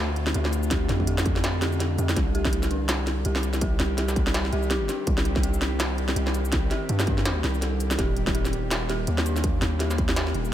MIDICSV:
0, 0, Header, 1, 6, 480
1, 0, Start_track
1, 0, Tempo, 363636
1, 937, Time_signature, 4, 2, 24, 8
1, 13910, End_track
2, 0, Start_track
2, 0, Title_t, "Soft synth lead"
2, 0, Program_c, 0, 80
2, 6208, Note_on_c, 0, 67, 98
2, 6693, Note_off_c, 0, 67, 0
2, 13910, End_track
3, 0, Start_track
3, 0, Title_t, "Synth bell"
3, 0, Program_c, 1, 98
3, 0, Control_c, 1, 64, 127
3, 0, Note_on_c, 1, 62, 80
3, 0, Note_on_c, 1, 67, 106
3, 435, Note_off_c, 1, 62, 0
3, 455, Note_off_c, 1, 67, 0
3, 455, Note_on_c, 1, 67, 79
3, 686, Note_off_c, 1, 67, 0
3, 939, Note_on_c, 1, 67, 82
3, 1168, Note_off_c, 1, 67, 0
3, 1418, Note_on_c, 1, 67, 79
3, 1570, Note_off_c, 1, 67, 0
3, 2140, Note_on_c, 1, 67, 80
3, 2358, Note_off_c, 1, 67, 0
3, 2383, Note_on_c, 1, 79, 76
3, 2599, Note_off_c, 1, 79, 0
3, 2622, Note_on_c, 1, 67, 81
3, 2839, Note_off_c, 1, 67, 0
3, 2873, Control_c, 1, 64, 0
3, 3100, Note_on_c, 1, 67, 105
3, 3114, Control_c, 1, 64, 127
3, 3329, Note_off_c, 1, 67, 0
3, 3579, Note_on_c, 1, 62, 76
3, 4278, Note_off_c, 1, 62, 0
3, 4299, Note_on_c, 1, 67, 77
3, 4528, Note_off_c, 1, 67, 0
3, 4772, Note_on_c, 1, 67, 84
3, 5005, Note_off_c, 1, 67, 0
3, 5253, Note_on_c, 1, 67, 81
3, 5408, Note_off_c, 1, 67, 0
3, 5975, Note_on_c, 1, 67, 108
3, 6206, Note_off_c, 1, 67, 0
3, 6454, Note_on_c, 1, 62, 82
3, 7155, Note_off_c, 1, 62, 0
3, 7176, Note_on_c, 1, 67, 76
3, 7406, Note_off_c, 1, 67, 0
3, 7650, Note_on_c, 1, 67, 84
3, 7883, Note_off_c, 1, 67, 0
3, 8133, Note_on_c, 1, 67, 81
3, 8288, Note_off_c, 1, 67, 0
3, 8855, Note_on_c, 1, 67, 98
3, 9086, Note_off_c, 1, 67, 0
3, 9332, Note_on_c, 1, 62, 78
3, 10034, Note_off_c, 1, 62, 0
3, 10055, Note_on_c, 1, 69, 78
3, 10208, Note_off_c, 1, 69, 0
3, 10539, Note_on_c, 1, 67, 83
3, 10557, Control_c, 1, 64, 0
3, 10768, Note_off_c, 1, 67, 0
3, 10773, Control_c, 1, 64, 127
3, 11020, Note_on_c, 1, 67, 79
3, 11171, Note_off_c, 1, 67, 0
3, 11741, Note_on_c, 1, 67, 103
3, 11969, Note_off_c, 1, 67, 0
3, 12217, Note_on_c, 1, 62, 79
3, 12917, Note_off_c, 1, 62, 0
3, 12937, Note_on_c, 1, 67, 82
3, 13167, Note_off_c, 1, 67, 0
3, 13415, Note_on_c, 1, 67, 82
3, 13646, Note_off_c, 1, 67, 0
3, 13910, End_track
4, 0, Start_track
4, 0, Title_t, "Synth drone"
4, 0, Program_c, 2, 95
4, 0, Note_on_c, 2, 50, 80
4, 0, Note_on_c, 2, 57, 75
4, 0, Note_on_c, 2, 62, 75
4, 0, Note_on_c, 2, 65, 88
4, 2805, Note_off_c, 2, 65, 0
4, 2808, Note_off_c, 2, 57, 0
4, 2809, Note_off_c, 2, 50, 0
4, 2818, Note_off_c, 2, 62, 0
4, 2852, Note_on_c, 2, 55, 69
4, 2852, Note_on_c, 2, 60, 71
4, 2855, Note_on_c, 2, 51, 82
4, 2859, Note_on_c, 2, 67, 85
4, 10482, Note_off_c, 2, 60, 0
4, 10528, Note_on_c, 2, 58, 69
4, 13910, Note_off_c, 2, 51, 0
4, 13910, Note_off_c, 2, 55, 0
4, 13910, Note_off_c, 2, 58, 0
4, 13910, Note_off_c, 2, 67, 0
4, 13910, End_track
5, 0, Start_track
5, 0, Title_t, "808-style bass"
5, 0, Program_c, 3, 38
5, 0, Note_on_c, 3, 38, 93
5, 442, Note_off_c, 3, 38, 0
5, 464, Note_on_c, 3, 38, 95
5, 1164, Note_off_c, 3, 38, 0
5, 1182, Note_on_c, 3, 41, 100
5, 2603, Note_off_c, 3, 41, 0
5, 2619, Note_on_c, 3, 41, 103
5, 2842, Note_off_c, 3, 41, 0
5, 2859, Note_on_c, 3, 36, 98
5, 4282, Note_off_c, 3, 36, 0
5, 4298, Note_on_c, 3, 36, 95
5, 5001, Note_off_c, 3, 36, 0
5, 5012, Note_on_c, 3, 36, 100
5, 5958, Note_off_c, 3, 36, 0
5, 5973, Note_on_c, 3, 36, 99
5, 6439, Note_off_c, 3, 36, 0
5, 6696, Note_on_c, 3, 36, 96
5, 8120, Note_off_c, 3, 36, 0
5, 8131, Note_on_c, 3, 36, 97
5, 8838, Note_off_c, 3, 36, 0
5, 9099, Note_on_c, 3, 43, 99
5, 9802, Note_off_c, 3, 43, 0
5, 9818, Note_on_c, 3, 36, 95
5, 10521, Note_off_c, 3, 36, 0
5, 10542, Note_on_c, 3, 27, 95
5, 11963, Note_off_c, 3, 27, 0
5, 11981, Note_on_c, 3, 39, 98
5, 12683, Note_off_c, 3, 39, 0
5, 12698, Note_on_c, 3, 39, 96
5, 13641, Note_off_c, 3, 39, 0
5, 13658, Note_on_c, 3, 27, 96
5, 13910, Note_off_c, 3, 27, 0
5, 13910, End_track
6, 0, Start_track
6, 0, Title_t, "Drums"
6, 216, Note_on_c, 9, 42, 36
6, 348, Note_off_c, 9, 42, 0
6, 350, Note_on_c, 9, 40, 82
6, 455, Note_on_c, 9, 42, 66
6, 482, Note_off_c, 9, 40, 0
6, 587, Note_off_c, 9, 42, 0
6, 592, Note_on_c, 9, 38, 35
6, 592, Note_on_c, 9, 40, 57
6, 696, Note_on_c, 9, 42, 37
6, 696, Note_on_c, 9, 82, 69
6, 724, Note_off_c, 9, 38, 0
6, 724, Note_off_c, 9, 40, 0
6, 828, Note_off_c, 9, 42, 0
6, 828, Note_off_c, 9, 82, 0
6, 833, Note_on_c, 9, 82, 70
6, 936, Note_on_c, 9, 40, 82
6, 936, Note_on_c, 9, 42, 80
6, 941, Note_on_c, 9, 36, 114
6, 965, Note_off_c, 9, 82, 0
6, 1068, Note_off_c, 9, 40, 0
6, 1068, Note_off_c, 9, 42, 0
6, 1073, Note_off_c, 9, 36, 0
6, 1177, Note_on_c, 9, 40, 57
6, 1177, Note_on_c, 9, 42, 40
6, 1309, Note_off_c, 9, 40, 0
6, 1309, Note_off_c, 9, 42, 0
6, 1319, Note_on_c, 9, 36, 60
6, 1417, Note_on_c, 9, 42, 72
6, 1451, Note_off_c, 9, 36, 0
6, 1549, Note_off_c, 9, 42, 0
6, 1558, Note_on_c, 9, 38, 36
6, 1558, Note_on_c, 9, 40, 84
6, 1558, Note_on_c, 9, 82, 69
6, 1657, Note_on_c, 9, 42, 39
6, 1661, Note_on_c, 9, 36, 103
6, 1690, Note_off_c, 9, 38, 0
6, 1690, Note_off_c, 9, 40, 0
6, 1690, Note_off_c, 9, 82, 0
6, 1789, Note_off_c, 9, 42, 0
6, 1793, Note_off_c, 9, 36, 0
6, 1796, Note_on_c, 9, 40, 57
6, 1898, Note_on_c, 9, 38, 115
6, 1898, Note_on_c, 9, 42, 85
6, 1928, Note_off_c, 9, 40, 0
6, 2030, Note_off_c, 9, 38, 0
6, 2030, Note_off_c, 9, 42, 0
6, 2136, Note_on_c, 9, 40, 83
6, 2136, Note_on_c, 9, 42, 36
6, 2268, Note_off_c, 9, 40, 0
6, 2268, Note_off_c, 9, 42, 0
6, 2275, Note_on_c, 9, 82, 39
6, 2380, Note_on_c, 9, 40, 59
6, 2380, Note_on_c, 9, 42, 67
6, 2407, Note_off_c, 9, 82, 0
6, 2512, Note_off_c, 9, 40, 0
6, 2512, Note_off_c, 9, 42, 0
6, 2620, Note_on_c, 9, 42, 39
6, 2620, Note_on_c, 9, 82, 71
6, 2752, Note_off_c, 9, 42, 0
6, 2752, Note_off_c, 9, 82, 0
6, 2759, Note_on_c, 9, 40, 84
6, 2759, Note_on_c, 9, 82, 71
6, 2857, Note_off_c, 9, 40, 0
6, 2857, Note_on_c, 9, 40, 55
6, 2857, Note_on_c, 9, 42, 81
6, 2860, Note_on_c, 9, 36, 114
6, 2891, Note_off_c, 9, 82, 0
6, 2989, Note_off_c, 9, 40, 0
6, 2989, Note_off_c, 9, 42, 0
6, 2992, Note_off_c, 9, 36, 0
6, 3100, Note_on_c, 9, 42, 41
6, 3232, Note_off_c, 9, 42, 0
6, 3237, Note_on_c, 9, 36, 107
6, 3237, Note_on_c, 9, 40, 83
6, 3336, Note_on_c, 9, 42, 70
6, 3369, Note_off_c, 9, 36, 0
6, 3369, Note_off_c, 9, 40, 0
6, 3468, Note_off_c, 9, 42, 0
6, 3470, Note_on_c, 9, 40, 56
6, 3470, Note_on_c, 9, 82, 67
6, 3573, Note_on_c, 9, 42, 39
6, 3602, Note_off_c, 9, 40, 0
6, 3602, Note_off_c, 9, 82, 0
6, 3705, Note_off_c, 9, 42, 0
6, 3811, Note_on_c, 9, 38, 119
6, 3811, Note_on_c, 9, 40, 82
6, 3811, Note_on_c, 9, 42, 82
6, 3811, Note_on_c, 9, 82, 69
6, 3943, Note_off_c, 9, 38, 0
6, 3943, Note_off_c, 9, 40, 0
6, 3943, Note_off_c, 9, 42, 0
6, 3943, Note_off_c, 9, 82, 0
6, 4051, Note_on_c, 9, 40, 55
6, 4051, Note_on_c, 9, 42, 37
6, 4183, Note_off_c, 9, 40, 0
6, 4183, Note_off_c, 9, 42, 0
6, 4289, Note_on_c, 9, 42, 70
6, 4421, Note_off_c, 9, 42, 0
6, 4429, Note_on_c, 9, 38, 38
6, 4429, Note_on_c, 9, 40, 86
6, 4528, Note_on_c, 9, 42, 38
6, 4528, Note_on_c, 9, 82, 69
6, 4561, Note_off_c, 9, 38, 0
6, 4561, Note_off_c, 9, 40, 0
6, 4660, Note_off_c, 9, 42, 0
6, 4660, Note_off_c, 9, 82, 0
6, 4666, Note_on_c, 9, 40, 58
6, 4666, Note_on_c, 9, 82, 70
6, 4770, Note_on_c, 9, 42, 83
6, 4774, Note_on_c, 9, 36, 119
6, 4798, Note_off_c, 9, 40, 0
6, 4798, Note_off_c, 9, 82, 0
6, 4902, Note_off_c, 9, 42, 0
6, 4906, Note_off_c, 9, 36, 0
6, 5011, Note_on_c, 9, 40, 79
6, 5011, Note_on_c, 9, 42, 41
6, 5143, Note_off_c, 9, 40, 0
6, 5143, Note_off_c, 9, 42, 0
6, 5251, Note_on_c, 9, 40, 57
6, 5251, Note_on_c, 9, 42, 74
6, 5383, Note_off_c, 9, 40, 0
6, 5383, Note_off_c, 9, 42, 0
6, 5392, Note_on_c, 9, 38, 39
6, 5392, Note_on_c, 9, 82, 68
6, 5495, Note_on_c, 9, 36, 111
6, 5495, Note_on_c, 9, 42, 40
6, 5524, Note_off_c, 9, 38, 0
6, 5524, Note_off_c, 9, 82, 0
6, 5627, Note_off_c, 9, 36, 0
6, 5627, Note_off_c, 9, 42, 0
6, 5632, Note_on_c, 9, 40, 79
6, 5733, Note_on_c, 9, 38, 127
6, 5733, Note_on_c, 9, 42, 84
6, 5764, Note_off_c, 9, 40, 0
6, 5865, Note_off_c, 9, 38, 0
6, 5865, Note_off_c, 9, 42, 0
6, 5873, Note_on_c, 9, 40, 53
6, 5974, Note_on_c, 9, 42, 39
6, 6005, Note_off_c, 9, 40, 0
6, 6106, Note_off_c, 9, 42, 0
6, 6108, Note_on_c, 9, 82, 36
6, 6212, Note_on_c, 9, 40, 79
6, 6212, Note_on_c, 9, 42, 70
6, 6240, Note_off_c, 9, 82, 0
6, 6344, Note_off_c, 9, 40, 0
6, 6344, Note_off_c, 9, 42, 0
6, 6453, Note_on_c, 9, 40, 54
6, 6453, Note_on_c, 9, 42, 39
6, 6453, Note_on_c, 9, 82, 66
6, 6585, Note_off_c, 9, 40, 0
6, 6585, Note_off_c, 9, 42, 0
6, 6585, Note_off_c, 9, 82, 0
6, 6692, Note_on_c, 9, 42, 82
6, 6696, Note_on_c, 9, 36, 123
6, 6824, Note_off_c, 9, 42, 0
6, 6828, Note_off_c, 9, 36, 0
6, 6832, Note_on_c, 9, 40, 81
6, 6932, Note_on_c, 9, 42, 40
6, 6964, Note_off_c, 9, 40, 0
6, 7064, Note_off_c, 9, 42, 0
6, 7073, Note_on_c, 9, 40, 53
6, 7074, Note_on_c, 9, 36, 115
6, 7173, Note_on_c, 9, 42, 70
6, 7205, Note_off_c, 9, 40, 0
6, 7206, Note_off_c, 9, 36, 0
6, 7305, Note_off_c, 9, 42, 0
6, 7309, Note_on_c, 9, 82, 64
6, 7413, Note_on_c, 9, 40, 81
6, 7413, Note_on_c, 9, 42, 39
6, 7441, Note_off_c, 9, 82, 0
6, 7545, Note_off_c, 9, 40, 0
6, 7545, Note_off_c, 9, 42, 0
6, 7653, Note_on_c, 9, 38, 127
6, 7653, Note_on_c, 9, 40, 54
6, 7653, Note_on_c, 9, 42, 84
6, 7653, Note_on_c, 9, 82, 64
6, 7785, Note_off_c, 9, 38, 0
6, 7785, Note_off_c, 9, 40, 0
6, 7785, Note_off_c, 9, 42, 0
6, 7785, Note_off_c, 9, 82, 0
6, 7896, Note_on_c, 9, 42, 38
6, 8028, Note_off_c, 9, 42, 0
6, 8031, Note_on_c, 9, 40, 76
6, 8135, Note_on_c, 9, 42, 72
6, 8163, Note_off_c, 9, 40, 0
6, 8267, Note_off_c, 9, 42, 0
6, 8273, Note_on_c, 9, 38, 39
6, 8273, Note_on_c, 9, 40, 54
6, 8374, Note_on_c, 9, 42, 40
6, 8374, Note_on_c, 9, 82, 64
6, 8405, Note_off_c, 9, 38, 0
6, 8405, Note_off_c, 9, 40, 0
6, 8506, Note_off_c, 9, 42, 0
6, 8506, Note_off_c, 9, 82, 0
6, 8514, Note_on_c, 9, 82, 66
6, 8611, Note_on_c, 9, 40, 76
6, 8611, Note_on_c, 9, 42, 80
6, 8617, Note_on_c, 9, 36, 119
6, 8646, Note_off_c, 9, 82, 0
6, 8743, Note_off_c, 9, 40, 0
6, 8743, Note_off_c, 9, 42, 0
6, 8749, Note_off_c, 9, 36, 0
6, 8855, Note_on_c, 9, 40, 51
6, 8855, Note_on_c, 9, 42, 37
6, 8987, Note_off_c, 9, 40, 0
6, 8987, Note_off_c, 9, 42, 0
6, 9097, Note_on_c, 9, 42, 69
6, 9229, Note_off_c, 9, 42, 0
6, 9233, Note_on_c, 9, 38, 39
6, 9233, Note_on_c, 9, 40, 78
6, 9233, Note_on_c, 9, 82, 65
6, 9333, Note_on_c, 9, 42, 38
6, 9338, Note_on_c, 9, 36, 109
6, 9365, Note_off_c, 9, 38, 0
6, 9365, Note_off_c, 9, 40, 0
6, 9365, Note_off_c, 9, 82, 0
6, 9465, Note_off_c, 9, 42, 0
6, 9470, Note_off_c, 9, 36, 0
6, 9475, Note_on_c, 9, 40, 51
6, 9576, Note_on_c, 9, 38, 121
6, 9576, Note_on_c, 9, 42, 79
6, 9607, Note_off_c, 9, 40, 0
6, 9708, Note_off_c, 9, 38, 0
6, 9708, Note_off_c, 9, 42, 0
6, 9820, Note_on_c, 9, 40, 74
6, 9820, Note_on_c, 9, 42, 37
6, 9952, Note_off_c, 9, 40, 0
6, 9952, Note_off_c, 9, 42, 0
6, 9957, Note_on_c, 9, 82, 35
6, 10059, Note_on_c, 9, 40, 52
6, 10059, Note_on_c, 9, 42, 67
6, 10089, Note_off_c, 9, 82, 0
6, 10191, Note_off_c, 9, 40, 0
6, 10191, Note_off_c, 9, 42, 0
6, 10300, Note_on_c, 9, 42, 38
6, 10300, Note_on_c, 9, 82, 65
6, 10432, Note_off_c, 9, 42, 0
6, 10432, Note_off_c, 9, 82, 0
6, 10438, Note_on_c, 9, 40, 79
6, 10438, Note_on_c, 9, 82, 67
6, 10540, Note_on_c, 9, 36, 113
6, 10542, Note_off_c, 9, 40, 0
6, 10542, Note_on_c, 9, 40, 49
6, 10542, Note_on_c, 9, 42, 76
6, 10570, Note_off_c, 9, 82, 0
6, 10672, Note_off_c, 9, 36, 0
6, 10674, Note_off_c, 9, 40, 0
6, 10674, Note_off_c, 9, 42, 0
6, 10778, Note_on_c, 9, 42, 36
6, 10910, Note_off_c, 9, 42, 0
6, 10916, Note_on_c, 9, 40, 78
6, 10918, Note_on_c, 9, 36, 110
6, 11018, Note_on_c, 9, 42, 66
6, 11048, Note_off_c, 9, 40, 0
6, 11050, Note_off_c, 9, 36, 0
6, 11150, Note_off_c, 9, 42, 0
6, 11157, Note_on_c, 9, 40, 53
6, 11157, Note_on_c, 9, 82, 68
6, 11260, Note_on_c, 9, 42, 35
6, 11289, Note_off_c, 9, 40, 0
6, 11289, Note_off_c, 9, 82, 0
6, 11392, Note_off_c, 9, 42, 0
6, 11500, Note_on_c, 9, 38, 121
6, 11500, Note_on_c, 9, 40, 75
6, 11500, Note_on_c, 9, 42, 77
6, 11500, Note_on_c, 9, 82, 66
6, 11632, Note_off_c, 9, 38, 0
6, 11632, Note_off_c, 9, 40, 0
6, 11632, Note_off_c, 9, 42, 0
6, 11632, Note_off_c, 9, 82, 0
6, 11741, Note_on_c, 9, 40, 53
6, 11741, Note_on_c, 9, 42, 36
6, 11873, Note_off_c, 9, 40, 0
6, 11873, Note_off_c, 9, 42, 0
6, 11975, Note_on_c, 9, 42, 64
6, 12107, Note_off_c, 9, 42, 0
6, 12118, Note_on_c, 9, 38, 39
6, 12118, Note_on_c, 9, 40, 77
6, 12223, Note_on_c, 9, 42, 36
6, 12223, Note_on_c, 9, 82, 68
6, 12250, Note_off_c, 9, 38, 0
6, 12250, Note_off_c, 9, 40, 0
6, 12355, Note_off_c, 9, 42, 0
6, 12355, Note_off_c, 9, 82, 0
6, 12361, Note_on_c, 9, 40, 52
6, 12361, Note_on_c, 9, 82, 67
6, 12458, Note_on_c, 9, 42, 77
6, 12459, Note_on_c, 9, 36, 110
6, 12493, Note_off_c, 9, 40, 0
6, 12493, Note_off_c, 9, 82, 0
6, 12590, Note_off_c, 9, 42, 0
6, 12591, Note_off_c, 9, 36, 0
6, 12696, Note_on_c, 9, 40, 80
6, 12696, Note_on_c, 9, 42, 37
6, 12828, Note_off_c, 9, 40, 0
6, 12828, Note_off_c, 9, 42, 0
6, 12936, Note_on_c, 9, 40, 54
6, 12936, Note_on_c, 9, 42, 67
6, 13068, Note_off_c, 9, 40, 0
6, 13068, Note_off_c, 9, 42, 0
6, 13074, Note_on_c, 9, 38, 37
6, 13074, Note_on_c, 9, 82, 70
6, 13178, Note_on_c, 9, 42, 36
6, 13180, Note_on_c, 9, 36, 101
6, 13206, Note_off_c, 9, 38, 0
6, 13206, Note_off_c, 9, 82, 0
6, 13310, Note_off_c, 9, 42, 0
6, 13312, Note_off_c, 9, 36, 0
6, 13314, Note_on_c, 9, 40, 77
6, 13417, Note_on_c, 9, 38, 115
6, 13417, Note_on_c, 9, 42, 78
6, 13446, Note_off_c, 9, 40, 0
6, 13549, Note_off_c, 9, 38, 0
6, 13549, Note_off_c, 9, 42, 0
6, 13555, Note_on_c, 9, 40, 51
6, 13655, Note_on_c, 9, 42, 34
6, 13687, Note_off_c, 9, 40, 0
6, 13787, Note_off_c, 9, 42, 0
6, 13792, Note_on_c, 9, 82, 40
6, 13910, Note_off_c, 9, 82, 0
6, 13910, End_track
0, 0, End_of_file